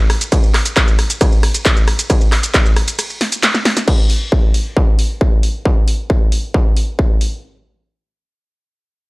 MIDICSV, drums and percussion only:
0, 0, Header, 1, 2, 480
1, 0, Start_track
1, 0, Tempo, 444444
1, 347, Time_signature, 4, 2, 24, 8
1, 9824, End_track
2, 0, Start_track
2, 0, Title_t, "Drums"
2, 106, Note_on_c, 9, 37, 95
2, 106, Note_on_c, 9, 46, 87
2, 214, Note_off_c, 9, 37, 0
2, 214, Note_off_c, 9, 46, 0
2, 229, Note_on_c, 9, 42, 64
2, 229, Note_on_c, 9, 82, 70
2, 337, Note_off_c, 9, 42, 0
2, 337, Note_off_c, 9, 82, 0
2, 347, Note_on_c, 9, 36, 108
2, 347, Note_on_c, 9, 37, 69
2, 347, Note_on_c, 9, 42, 69
2, 347, Note_on_c, 9, 51, 76
2, 347, Note_on_c, 9, 82, 57
2, 455, Note_off_c, 9, 36, 0
2, 455, Note_off_c, 9, 37, 0
2, 455, Note_off_c, 9, 42, 0
2, 455, Note_off_c, 9, 51, 0
2, 455, Note_off_c, 9, 82, 0
2, 469, Note_on_c, 9, 82, 32
2, 577, Note_off_c, 9, 82, 0
2, 587, Note_on_c, 9, 37, 93
2, 587, Note_on_c, 9, 39, 68
2, 587, Note_on_c, 9, 46, 105
2, 695, Note_off_c, 9, 37, 0
2, 695, Note_off_c, 9, 39, 0
2, 695, Note_off_c, 9, 46, 0
2, 708, Note_on_c, 9, 42, 66
2, 708, Note_on_c, 9, 82, 68
2, 816, Note_off_c, 9, 42, 0
2, 816, Note_off_c, 9, 82, 0
2, 827, Note_on_c, 9, 36, 114
2, 827, Note_on_c, 9, 37, 93
2, 827, Note_on_c, 9, 39, 125
2, 827, Note_on_c, 9, 42, 66
2, 827, Note_on_c, 9, 51, 71
2, 827, Note_on_c, 9, 82, 55
2, 935, Note_off_c, 9, 36, 0
2, 935, Note_off_c, 9, 37, 0
2, 935, Note_off_c, 9, 39, 0
2, 935, Note_off_c, 9, 42, 0
2, 935, Note_off_c, 9, 51, 0
2, 935, Note_off_c, 9, 82, 0
2, 949, Note_on_c, 9, 82, 32
2, 1057, Note_off_c, 9, 82, 0
2, 1066, Note_on_c, 9, 37, 69
2, 1066, Note_on_c, 9, 46, 94
2, 1174, Note_off_c, 9, 37, 0
2, 1174, Note_off_c, 9, 46, 0
2, 1189, Note_on_c, 9, 42, 65
2, 1189, Note_on_c, 9, 82, 65
2, 1297, Note_off_c, 9, 42, 0
2, 1297, Note_off_c, 9, 82, 0
2, 1306, Note_on_c, 9, 37, 100
2, 1306, Note_on_c, 9, 42, 66
2, 1306, Note_on_c, 9, 51, 75
2, 1306, Note_on_c, 9, 82, 56
2, 1307, Note_on_c, 9, 36, 114
2, 1414, Note_off_c, 9, 37, 0
2, 1414, Note_off_c, 9, 42, 0
2, 1414, Note_off_c, 9, 51, 0
2, 1414, Note_off_c, 9, 82, 0
2, 1415, Note_off_c, 9, 36, 0
2, 1428, Note_on_c, 9, 82, 33
2, 1536, Note_off_c, 9, 82, 0
2, 1546, Note_on_c, 9, 37, 90
2, 1546, Note_on_c, 9, 46, 107
2, 1654, Note_off_c, 9, 37, 0
2, 1654, Note_off_c, 9, 46, 0
2, 1668, Note_on_c, 9, 42, 65
2, 1668, Note_on_c, 9, 82, 67
2, 1776, Note_off_c, 9, 42, 0
2, 1776, Note_off_c, 9, 82, 0
2, 1786, Note_on_c, 9, 36, 112
2, 1786, Note_on_c, 9, 37, 63
2, 1786, Note_on_c, 9, 39, 127
2, 1786, Note_on_c, 9, 42, 66
2, 1786, Note_on_c, 9, 51, 73
2, 1786, Note_on_c, 9, 82, 57
2, 1894, Note_off_c, 9, 36, 0
2, 1894, Note_off_c, 9, 37, 0
2, 1894, Note_off_c, 9, 39, 0
2, 1894, Note_off_c, 9, 42, 0
2, 1894, Note_off_c, 9, 51, 0
2, 1894, Note_off_c, 9, 82, 0
2, 1909, Note_on_c, 9, 82, 34
2, 2017, Note_off_c, 9, 82, 0
2, 2026, Note_on_c, 9, 37, 92
2, 2026, Note_on_c, 9, 46, 86
2, 2134, Note_off_c, 9, 37, 0
2, 2134, Note_off_c, 9, 46, 0
2, 2148, Note_on_c, 9, 42, 66
2, 2148, Note_on_c, 9, 82, 68
2, 2256, Note_off_c, 9, 42, 0
2, 2256, Note_off_c, 9, 82, 0
2, 2266, Note_on_c, 9, 36, 112
2, 2266, Note_on_c, 9, 37, 90
2, 2266, Note_on_c, 9, 42, 70
2, 2266, Note_on_c, 9, 51, 73
2, 2266, Note_on_c, 9, 82, 53
2, 2374, Note_off_c, 9, 36, 0
2, 2374, Note_off_c, 9, 37, 0
2, 2374, Note_off_c, 9, 42, 0
2, 2374, Note_off_c, 9, 51, 0
2, 2374, Note_off_c, 9, 82, 0
2, 2389, Note_on_c, 9, 82, 32
2, 2497, Note_off_c, 9, 82, 0
2, 2506, Note_on_c, 9, 37, 67
2, 2506, Note_on_c, 9, 39, 67
2, 2506, Note_on_c, 9, 46, 106
2, 2614, Note_off_c, 9, 37, 0
2, 2614, Note_off_c, 9, 39, 0
2, 2614, Note_off_c, 9, 46, 0
2, 2628, Note_on_c, 9, 42, 69
2, 2628, Note_on_c, 9, 82, 64
2, 2736, Note_off_c, 9, 42, 0
2, 2736, Note_off_c, 9, 82, 0
2, 2746, Note_on_c, 9, 36, 116
2, 2746, Note_on_c, 9, 37, 88
2, 2746, Note_on_c, 9, 39, 127
2, 2746, Note_on_c, 9, 42, 72
2, 2746, Note_on_c, 9, 51, 72
2, 2746, Note_on_c, 9, 82, 53
2, 2854, Note_off_c, 9, 36, 0
2, 2854, Note_off_c, 9, 37, 0
2, 2854, Note_off_c, 9, 39, 0
2, 2854, Note_off_c, 9, 42, 0
2, 2854, Note_off_c, 9, 51, 0
2, 2854, Note_off_c, 9, 82, 0
2, 2869, Note_on_c, 9, 82, 32
2, 2977, Note_off_c, 9, 82, 0
2, 2986, Note_on_c, 9, 37, 90
2, 2986, Note_on_c, 9, 46, 88
2, 3094, Note_off_c, 9, 37, 0
2, 3094, Note_off_c, 9, 46, 0
2, 3108, Note_on_c, 9, 42, 69
2, 3108, Note_on_c, 9, 82, 62
2, 3216, Note_off_c, 9, 42, 0
2, 3216, Note_off_c, 9, 82, 0
2, 3226, Note_on_c, 9, 37, 67
2, 3226, Note_on_c, 9, 42, 70
2, 3226, Note_on_c, 9, 51, 75
2, 3226, Note_on_c, 9, 82, 54
2, 3334, Note_off_c, 9, 37, 0
2, 3334, Note_off_c, 9, 42, 0
2, 3334, Note_off_c, 9, 51, 0
2, 3334, Note_off_c, 9, 82, 0
2, 3348, Note_on_c, 9, 82, 33
2, 3456, Note_off_c, 9, 82, 0
2, 3466, Note_on_c, 9, 38, 64
2, 3466, Note_on_c, 9, 46, 106
2, 3574, Note_off_c, 9, 38, 0
2, 3574, Note_off_c, 9, 46, 0
2, 3588, Note_on_c, 9, 42, 68
2, 3588, Note_on_c, 9, 82, 66
2, 3696, Note_off_c, 9, 42, 0
2, 3696, Note_off_c, 9, 82, 0
2, 3706, Note_on_c, 9, 38, 81
2, 3706, Note_on_c, 9, 39, 127
2, 3706, Note_on_c, 9, 42, 70
2, 3706, Note_on_c, 9, 51, 71
2, 3706, Note_on_c, 9, 82, 54
2, 3814, Note_off_c, 9, 38, 0
2, 3814, Note_off_c, 9, 39, 0
2, 3814, Note_off_c, 9, 42, 0
2, 3814, Note_off_c, 9, 51, 0
2, 3814, Note_off_c, 9, 82, 0
2, 3828, Note_on_c, 9, 38, 77
2, 3828, Note_on_c, 9, 82, 34
2, 3936, Note_off_c, 9, 38, 0
2, 3936, Note_off_c, 9, 82, 0
2, 3946, Note_on_c, 9, 38, 100
2, 3946, Note_on_c, 9, 46, 89
2, 4054, Note_off_c, 9, 38, 0
2, 4054, Note_off_c, 9, 46, 0
2, 4068, Note_on_c, 9, 38, 86
2, 4068, Note_on_c, 9, 42, 65
2, 4068, Note_on_c, 9, 82, 64
2, 4176, Note_off_c, 9, 38, 0
2, 4176, Note_off_c, 9, 42, 0
2, 4176, Note_off_c, 9, 82, 0
2, 4186, Note_on_c, 9, 49, 94
2, 4187, Note_on_c, 9, 36, 120
2, 4294, Note_off_c, 9, 49, 0
2, 4295, Note_off_c, 9, 36, 0
2, 4426, Note_on_c, 9, 46, 105
2, 4534, Note_off_c, 9, 46, 0
2, 4667, Note_on_c, 9, 36, 118
2, 4775, Note_off_c, 9, 36, 0
2, 4906, Note_on_c, 9, 46, 90
2, 5014, Note_off_c, 9, 46, 0
2, 5147, Note_on_c, 9, 36, 119
2, 5255, Note_off_c, 9, 36, 0
2, 5386, Note_on_c, 9, 46, 103
2, 5494, Note_off_c, 9, 46, 0
2, 5627, Note_on_c, 9, 36, 118
2, 5735, Note_off_c, 9, 36, 0
2, 5866, Note_on_c, 9, 46, 87
2, 5974, Note_off_c, 9, 46, 0
2, 6107, Note_on_c, 9, 36, 115
2, 6215, Note_off_c, 9, 36, 0
2, 6346, Note_on_c, 9, 46, 109
2, 6454, Note_off_c, 9, 46, 0
2, 6587, Note_on_c, 9, 36, 116
2, 6695, Note_off_c, 9, 36, 0
2, 6827, Note_on_c, 9, 46, 93
2, 6935, Note_off_c, 9, 46, 0
2, 7067, Note_on_c, 9, 36, 120
2, 7175, Note_off_c, 9, 36, 0
2, 7307, Note_on_c, 9, 46, 103
2, 7415, Note_off_c, 9, 46, 0
2, 7547, Note_on_c, 9, 36, 113
2, 7655, Note_off_c, 9, 36, 0
2, 7787, Note_on_c, 9, 46, 87
2, 7895, Note_off_c, 9, 46, 0
2, 9824, End_track
0, 0, End_of_file